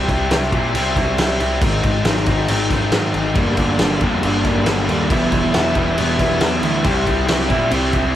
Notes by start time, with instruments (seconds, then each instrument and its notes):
Already playing: distorted electric guitar C3
0.08 picked electric bass C2, distorted electric guitar G3 C4 E4, kick, crash
0.30 picked electric bass C2, distorted electric guitar C3 G3 C4 E4, snare, crash
0.42 snare
0.52 picked electric bass A#2, distorted electric guitar C3 G3 C4 E4, kick, crash
0.74 picked electric bass C2, distorted electric guitar C3 G3 C4 E4, crash
0.96 distorted electric guitar G3 C4 E4, kick, snare, crash
1.18 picked electric bass C2, distorted electric guitar C3 G3 C4 E4, snare, crash
1.39 picked electric bass C2, distorted electric guitar G3 C4 E4, crash
1.61 picked electric bass G#1, distorted electric guitar G#2 D#3 G#3 C4 D#4, kick, crash
1.83 picked electric bass G#1, distorted electric guitar G#3 C4 D#4, kick, crash
2.04 picked electric bass G#1, distorted electric guitar D#3 G#3 C4 D#4, snare, crash
2.17 snare
2.26 picked electric bass G#1, distorted electric guitar G#2 D#3 G#3 C4 D#4, kick, crash
2.48 picked electric bass G#1, distorted electric guitar D#3 G#3 C4 D#4, crash
2.71 distorted electric guitar G#3 C4 D#4, kick, snare, crash
2.92 picked electric bass G#2, distorted electric guitar G#2 D#3 G#3 C4 D#4, snare, crash
3.14 picked electric bass G#1, distorted electric guitar G#3 C4 D#4, crash
3.35 picked electric bass G1, distorted electric guitar G2 D3 G3 A#3 D4, kick, crash
3.57 picked electric bass G1, distorted electric guitar G3 A#3 D4, kick, crash
3.78 picked electric bass G1, overdriven electric guitar G2, distorted electric guitar D3 G3, snare, crash
3.82 distorted electric guitar A#3 D4
4.00 picked electric bass F2, overdriven electric guitar G2, distorted electric guitar D3 G3 A#3 D4, kick, crash
4.04 distorted electric guitar G2
4.22 picked electric bass G1, overdriven electric guitar G2, distorted electric guitar D3 G3 A#3, crash
4.26 distorted electric guitar D4
4.45 distorted electric guitar G3 A#3 D4, kick, snare, crash
4.66 picked electric bass G1, distorted electric guitar G2 D3 G3 A#3 D4, snare, crash
4.88 picked electric bass D#2, overdriven electric guitar G2 D3, distorted electric guitar G3 A#3 D4, crash
5.10 picked electric bass E1, distorted electric guitar E3 G3 B3 E4, kick, crash
5.32 picked electric bass E1, distorted electric guitar G3 B3 E4, kick, crash
5.53 picked electric bass E1, distorted electric guitar E3 G3 B3 E4, snare, crash
5.75 picked electric bass E1, distorted electric guitar E3 G3 B3 E4, kick, crash
5.98 picked electric bass E1, distorted electric guitar E3 G3 B3 E4, crash
6.19 distorted electric guitar G3 B3 E4, kick, snare, crash
6.41 picked electric bass E2, distorted electric guitar E3 G3 B3 E4, snare, crash
6.62 picked electric bass D2, overdriven electric guitar E3, distorted electric guitar G3 B3 E4, crash
6.84 picked electric bass C2, distorted electric guitar C3 G3 C4 E4, kick, crash
7.06 picked electric bass C2, distorted electric guitar G3 C4 E4, kick, crash
7.27 picked electric bass C2, distorted electric guitar C3 G3 C4 E4, snare, crash
7.40 snare
7.49 picked electric bass A#2, distorted electric guitar C3 G3 C4 E4, kick, crash
7.70 picked electric bass C2, distorted electric guitar C3 G3 C4 E4, crash
7.93 distorted electric guitar G3 C4 E4, kick, snare, crash